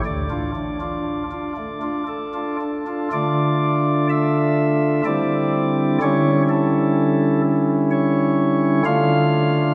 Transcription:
0.05 D2 D3 D5
0.30 D4 F4
0.55 D4
0.81 D4 F4
1.31 D4 F4
1.57 A3
1.82 D4 F4
2.08 A4
2.34 D4 F4
2.61 D4
2.87 D4 F4
3.12 D3 A3 D4 F4 D5
4.09 E5
5.05 D3 G3 C4 E4 D5
6.02 D3 G3 C#4 E4 C#5
6.49 A4
7.91 C#5
8.85 D3 A3 D4 F4 F5

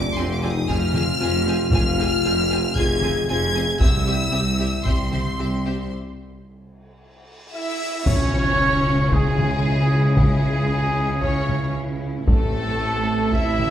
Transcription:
Already playing: F1 F2 D4 D6
0.15 F1 F2 C4 F4 G#4 G#5 C6
0.33 D4 D6
0.43 C4 F4 G#4 G#5
0.51 D#4 D#6
0.66 F1 F2 C4 F4 G#4 G#5 F6, taiko
0.94 C4 F4 G#4 G#5, taiko mid
1.19 F1 F2 C4 F4 G#4 G#5
1.45 C4 F4 G#4 G#5
1.71 F1 F2 C4 F4 G#4 G#5 F6, taiko
1.98 C4 F4 G#4 G#5
2.23 F1 F2 C4 F4 G#4 G#5
2.51 C4 F4 G#4 G#5
2.75 F1 F2 C4 F4 G#4 G#5 G#6, taiko
3.02 C4 F4 G#4 G#5, taiko mid
3.27 F1 F2 C4 F4 G#4 G#5 G#6
3.54 C4 F4 G#4 G#5
3.80 C2 C4 E4 G4 E5 E6, taiko
4.07 C4 G4 E5
4.31 C2 C4 G4 E5
4.59 C4 G4 E5
4.84 C2 C4 G4 E5 C6, taiko
5.12 C4 G4 E5, taiko mid
5.37 C2 C4 G4 E5
5.66 C4 G4 E5
5.92 cymbal swell
7.51 E4 E5
8.05 C#2 C#3 C#4 E4 C#5, taiko, tam-tam, sub drop
9.12 G#3 G#4, taiko
9.38 taiko mid
10.16 G#3 G#4, taiko
11.20 C#4 C#5, taiko
11.49 taiko mid
12.27 A1 A2 A3 C4 E4 A4, taiko
13.32 E4 E5, taiko
13.59 taiko mid

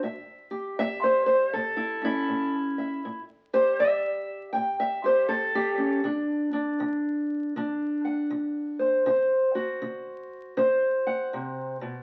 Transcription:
0.03 A2 E5
0.51 G4
0.79 A2 E5
1.04 C5
1.26 C5
1.53 A2 A4
1.77 E4
2.02 C#4 E4
2.29 A2
2.78 E5
3.05 A2
3.53 G4 C5
3.79 A2 E5
4.53 A2 G5
4.80 E5
5.04 G4 C5
5.29 A2 A4
5.55 G4
5.78 C#4
6.04 D3 D4
6.53 D4
6.80 D3
7.56 D3 D4
8.05 F#5
8.30 D3
8.79 C5
9.06 D3 C5
9.55 F#4
9.82 D3
10.57 D3 C5
11.07 F#5
11.33 C3
11.81 B2

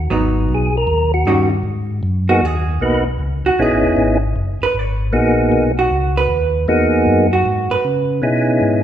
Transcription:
0.10 G#1 F#3 B3 D#4
0.49 B1
0.55 G#4
0.77 A#4
0.87 D#2
1.14 F#4
1.26 G2 D#3 G3 C#4 F#4
1.63 G#2
2.03 F#2
2.29 A#3 B3 D#4 F#4 G#4
2.41 D#2 G#4
2.80 B1 A#3 B3 D#4 F#4 B4
3.19 C#2
3.45 C#2 F#4
3.59 A#1 B3 C#4 D#4 E4 G#4
3.71 G#1
3.84 E1
3.97 G#1
4.36 F#1
4.61 F#1 B4
4.74 G#1
4.79 C#5
5.12 A#1 A#3 B3 D#4 F#4 G#4
5.52 B1
5.79 F#4
5.90 C#2
6.17 B4
6.29 D#2
6.68 E2 A#3 B3 D#4 F#4 G#4
7.06 F#2
7.33 F#4
7.45 G#2
7.70 G#2 B4
7.84 C#3
8.22 B2 B3 C#4 D#4 E4 G#4
8.61 G#2

